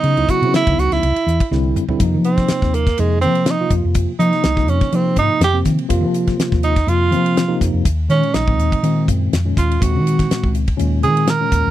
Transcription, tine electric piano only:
0.00 0.12 C#3 medium
0.00 0.12 F#3 medium
0.00 0.12 B3 medium
0.00 0.12 D#4 medium
0.17 0.27 C#3 medium
0.17 0.27 F#3 medium
0.17 0.27 B3 medium
0.17 0.27 E4 medium
0.30 0.40 C#3 medium
0.30 0.41 F#3 medium
0.30 0.41 B3 medium
0.30 0.41 E4 medium
0.44 0.63 C#3 medium
0.44 0.63 F#3 medium
0.44 0.63 B3 medium
0.44 0.63 E4 medium
0.68 1.03 C#3 medium
0.68 1.03 F#3 medium
0.68 1.03 B3 medium
0.68 1.04 D#4 medium
1.52 1.83 D3 medium
1.52 1.83 G3 medium
1.52 1.83 C4 medium
1.52 1.83 E4 loud
1.89 2.00 D3 medium
1.89 2.00 G3 medium
1.89 2.00 C4 medium
1.89 2.00 E4 medium
2.01 2.84 C3 medium
2.01 2.84 F3 medium
2.01 2.84 A#3 medium
2.01 2.84 D#4 loud
2.97 3.18 C3 medium
2.97 3.19 F3 medium
2.97 3.19 A#3 medium
2.97 3.19 D#4 medium
3.23 3.54 C3 medium
3.23 3.54 F3 medium
3.23 3.54 A#3 medium
3.23 3.54 C4 medium
3.60 4.11 C3 medium
3.60 4.11 F3 medium
3.60 4.11 A#3 medium
3.60 4.12 F4 medium
4.19 4.51 C3 medium
4.19 4.51 F3 medium
4.19 4.51 A#3 medium
4.19 4.51 D#4 medium
4.56 4.87 C3 medium
4.56 4.87 F3 medium
4.56 4.87 A#3 medium
4.56 4.87 D#4 medium
4.92 5.44 C3 medium
4.92 5.44 F3 medium
4.92 5.44 A#3 medium
4.92 5.45 D#4 medium
5.53 5.84 C3 medium
5.53 5.84 F3 medium
5.53 5.85 A#3 medium
5.53 5.85 C4 medium
5.89 6.73 C3 loud
5.89 6.73 F3 medium
5.89 6.73 A#3 medium
5.89 6.73 F4 loud
6.87 7.09 C3 medium
6.87 7.09 F3 medium
6.87 7.09 A#3 medium
6.87 7.09 F4 medium
7.11 7.43 C3 medium
7.11 7.43 F3 medium
7.11 7.44 A#3 medium
7.11 7.44 C4 medium
7.48 7.85 C3 medium
7.48 7.85 F3 medium
7.48 7.85 A#3 medium
7.48 7.85 D#4 medium
8.09 8.41 A#2 medium
8.09 8.41 D#3 medium
8.09 8.41 G#3 medium
8.09 8.41 C#4 medium
8.48 8.79 A#2 medium
8.48 8.78 D#3 medium
8.48 8.78 G#3 medium
8.48 8.79 C4 medium
8.83 9.35 A#2 medium
8.83 9.35 D#3 medium
8.83 9.35 G#3 medium
8.83 9.35 C4 medium
9.45 9.75 A#2 medium
9.45 9.76 D#3 medium
9.45 9.76 G#3 medium
9.45 9.76 C#4 medium
9.79 10.63 A#2 medium
9.79 10.64 D#3 medium
9.79 10.63 G#3 medium
9.79 10.64 C4 medium
10.77 10.99 A#2 medium
10.77 10.99 D#3 medium
10.77 10.99 G#3 medium
10.77 10.99 C#4 loud
11.01 11.33 A#2 medium
11.01 11.34 D#3 medium
11.01 11.34 G#3 medium
11.01 11.34 C4 medium
11.40 11.71 A#2 medium
11.40 11.71 D#3 medium
11.40 11.71 G#3 medium
11.40 11.71 C#4 medium

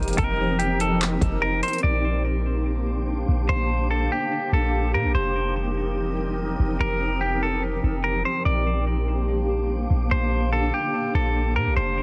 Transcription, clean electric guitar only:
0.18 0.57 A#4 loud
0.59 0.79 G4 medium
0.81 1.00 A4 medium
1.42 1.62 A#4 medium
1.63 1.83 C5 medium
1.83 2.22 D5 medium
3.49 3.88 C5 medium
3.91 4.10 A4 medium
4.12 4.50 G4 medium
4.53 4.92 A4 medium
4.94 5.14 A#4 medium
5.15 5.54 C5 loud
6.81 7.19 A#4 loud
7.21 7.41 G4 medium
7.43 7.62 A4 medium
8.04 8.24 A#4 medium
8.25 8.45 C5 medium
8.45 8.84 D5 medium
10.11 10.50 C5 medium
10.53 10.72 A4 medium
10.74 11.12 G4 medium
11.15 11.54 A4 medium
11.56 11.76 A#4 medium
11.77 12.03 C5 loud

